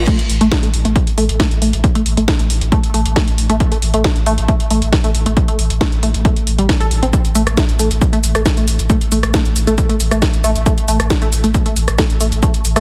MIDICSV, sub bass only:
0, 0, Header, 1, 2, 480
1, 0, Start_track
1, 0, Tempo, 441176
1, 81, Time_signature, 4, 2, 24, 8
1, 13928, End_track
2, 0, Start_track
2, 0, Title_t, "Sub bass"
2, 0, Program_c, 0, 38
2, 205, Note_on_c, 0, 33, 76
2, 315, Note_off_c, 0, 33, 0
2, 321, Note_on_c, 0, 33, 99
2, 438, Note_off_c, 0, 33, 0
2, 445, Note_on_c, 0, 33, 78
2, 558, Note_off_c, 0, 33, 0
2, 686, Note_on_c, 0, 33, 80
2, 794, Note_off_c, 0, 33, 0
2, 800, Note_on_c, 0, 33, 99
2, 918, Note_off_c, 0, 33, 0
2, 925, Note_on_c, 0, 33, 83
2, 1038, Note_off_c, 0, 33, 0
2, 1164, Note_on_c, 0, 33, 80
2, 1275, Note_off_c, 0, 33, 0
2, 1281, Note_on_c, 0, 33, 98
2, 1399, Note_off_c, 0, 33, 0
2, 1405, Note_on_c, 0, 33, 82
2, 1518, Note_off_c, 0, 33, 0
2, 1645, Note_on_c, 0, 33, 76
2, 1754, Note_off_c, 0, 33, 0
2, 1761, Note_on_c, 0, 33, 102
2, 1879, Note_off_c, 0, 33, 0
2, 1885, Note_on_c, 0, 33, 78
2, 1998, Note_off_c, 0, 33, 0
2, 2125, Note_on_c, 0, 33, 75
2, 2233, Note_off_c, 0, 33, 0
2, 2240, Note_on_c, 0, 33, 100
2, 2357, Note_off_c, 0, 33, 0
2, 2364, Note_on_c, 0, 33, 77
2, 2477, Note_off_c, 0, 33, 0
2, 2605, Note_on_c, 0, 33, 77
2, 2714, Note_off_c, 0, 33, 0
2, 2721, Note_on_c, 0, 33, 98
2, 2839, Note_off_c, 0, 33, 0
2, 2845, Note_on_c, 0, 33, 79
2, 2958, Note_off_c, 0, 33, 0
2, 3084, Note_on_c, 0, 33, 77
2, 3193, Note_off_c, 0, 33, 0
2, 3200, Note_on_c, 0, 33, 99
2, 3319, Note_off_c, 0, 33, 0
2, 3325, Note_on_c, 0, 33, 83
2, 3438, Note_off_c, 0, 33, 0
2, 3564, Note_on_c, 0, 33, 80
2, 3674, Note_off_c, 0, 33, 0
2, 3680, Note_on_c, 0, 33, 101
2, 3798, Note_off_c, 0, 33, 0
2, 3804, Note_on_c, 0, 33, 81
2, 3918, Note_off_c, 0, 33, 0
2, 4045, Note_on_c, 0, 33, 77
2, 4153, Note_off_c, 0, 33, 0
2, 4160, Note_on_c, 0, 33, 101
2, 4277, Note_off_c, 0, 33, 0
2, 4284, Note_on_c, 0, 33, 80
2, 4397, Note_off_c, 0, 33, 0
2, 4524, Note_on_c, 0, 33, 77
2, 4632, Note_off_c, 0, 33, 0
2, 4639, Note_on_c, 0, 33, 99
2, 4758, Note_off_c, 0, 33, 0
2, 4764, Note_on_c, 0, 33, 83
2, 4878, Note_off_c, 0, 33, 0
2, 5004, Note_on_c, 0, 33, 79
2, 5113, Note_off_c, 0, 33, 0
2, 5119, Note_on_c, 0, 33, 102
2, 5237, Note_off_c, 0, 33, 0
2, 5244, Note_on_c, 0, 33, 80
2, 5357, Note_off_c, 0, 33, 0
2, 5484, Note_on_c, 0, 33, 82
2, 5592, Note_off_c, 0, 33, 0
2, 5599, Note_on_c, 0, 33, 106
2, 5717, Note_off_c, 0, 33, 0
2, 5724, Note_on_c, 0, 33, 80
2, 5837, Note_off_c, 0, 33, 0
2, 5964, Note_on_c, 0, 33, 77
2, 6072, Note_off_c, 0, 33, 0
2, 6079, Note_on_c, 0, 33, 101
2, 6197, Note_off_c, 0, 33, 0
2, 6204, Note_on_c, 0, 33, 78
2, 6317, Note_off_c, 0, 33, 0
2, 6444, Note_on_c, 0, 33, 78
2, 6552, Note_off_c, 0, 33, 0
2, 6558, Note_on_c, 0, 33, 101
2, 6678, Note_off_c, 0, 33, 0
2, 6685, Note_on_c, 0, 33, 83
2, 6798, Note_off_c, 0, 33, 0
2, 6924, Note_on_c, 0, 33, 80
2, 7034, Note_off_c, 0, 33, 0
2, 7040, Note_on_c, 0, 33, 101
2, 7157, Note_off_c, 0, 33, 0
2, 7164, Note_on_c, 0, 33, 83
2, 7278, Note_off_c, 0, 33, 0
2, 7405, Note_on_c, 0, 33, 78
2, 7512, Note_off_c, 0, 33, 0
2, 7519, Note_on_c, 0, 33, 102
2, 7637, Note_off_c, 0, 33, 0
2, 7644, Note_on_c, 0, 33, 80
2, 7757, Note_off_c, 0, 33, 0
2, 7883, Note_on_c, 0, 33, 76
2, 7991, Note_off_c, 0, 33, 0
2, 7998, Note_on_c, 0, 33, 99
2, 8116, Note_off_c, 0, 33, 0
2, 8123, Note_on_c, 0, 33, 81
2, 8237, Note_off_c, 0, 33, 0
2, 8363, Note_on_c, 0, 33, 77
2, 8471, Note_off_c, 0, 33, 0
2, 8478, Note_on_c, 0, 33, 100
2, 8596, Note_off_c, 0, 33, 0
2, 8603, Note_on_c, 0, 33, 80
2, 8717, Note_off_c, 0, 33, 0
2, 8844, Note_on_c, 0, 33, 80
2, 8952, Note_off_c, 0, 33, 0
2, 8959, Note_on_c, 0, 33, 102
2, 9078, Note_off_c, 0, 33, 0
2, 9084, Note_on_c, 0, 33, 83
2, 9198, Note_off_c, 0, 33, 0
2, 9324, Note_on_c, 0, 33, 76
2, 9432, Note_off_c, 0, 33, 0
2, 9439, Note_on_c, 0, 33, 101
2, 9558, Note_off_c, 0, 33, 0
2, 9564, Note_on_c, 0, 33, 79
2, 9678, Note_off_c, 0, 33, 0
2, 9804, Note_on_c, 0, 33, 77
2, 9913, Note_off_c, 0, 33, 0
2, 9919, Note_on_c, 0, 33, 102
2, 10038, Note_off_c, 0, 33, 0
2, 10045, Note_on_c, 0, 33, 76
2, 10158, Note_off_c, 0, 33, 0
2, 10285, Note_on_c, 0, 33, 80
2, 10393, Note_off_c, 0, 33, 0
2, 10399, Note_on_c, 0, 33, 96
2, 10518, Note_off_c, 0, 33, 0
2, 10524, Note_on_c, 0, 33, 83
2, 10638, Note_off_c, 0, 33, 0
2, 10764, Note_on_c, 0, 33, 82
2, 10874, Note_off_c, 0, 33, 0
2, 10880, Note_on_c, 0, 33, 99
2, 10999, Note_off_c, 0, 33, 0
2, 11006, Note_on_c, 0, 33, 83
2, 11118, Note_off_c, 0, 33, 0
2, 11246, Note_on_c, 0, 33, 82
2, 11354, Note_off_c, 0, 33, 0
2, 11361, Note_on_c, 0, 33, 104
2, 11478, Note_off_c, 0, 33, 0
2, 11485, Note_on_c, 0, 33, 80
2, 11598, Note_off_c, 0, 33, 0
2, 11725, Note_on_c, 0, 33, 77
2, 11833, Note_off_c, 0, 33, 0
2, 11840, Note_on_c, 0, 33, 98
2, 11958, Note_off_c, 0, 33, 0
2, 11965, Note_on_c, 0, 33, 79
2, 12078, Note_off_c, 0, 33, 0
2, 12205, Note_on_c, 0, 33, 81
2, 12314, Note_off_c, 0, 33, 0
2, 12321, Note_on_c, 0, 33, 97
2, 12439, Note_off_c, 0, 33, 0
2, 12445, Note_on_c, 0, 33, 81
2, 12558, Note_off_c, 0, 33, 0
2, 12686, Note_on_c, 0, 33, 76
2, 12793, Note_off_c, 0, 33, 0
2, 12800, Note_on_c, 0, 33, 100
2, 12918, Note_off_c, 0, 33, 0
2, 12925, Note_on_c, 0, 33, 83
2, 13038, Note_off_c, 0, 33, 0
2, 13165, Note_on_c, 0, 33, 76
2, 13274, Note_off_c, 0, 33, 0
2, 13280, Note_on_c, 0, 33, 101
2, 13398, Note_off_c, 0, 33, 0
2, 13404, Note_on_c, 0, 33, 77
2, 13518, Note_off_c, 0, 33, 0
2, 13644, Note_on_c, 0, 33, 76
2, 13754, Note_off_c, 0, 33, 0
2, 13760, Note_on_c, 0, 33, 104
2, 13879, Note_off_c, 0, 33, 0
2, 13885, Note_on_c, 0, 33, 79
2, 13928, Note_off_c, 0, 33, 0
2, 13928, End_track
0, 0, End_of_file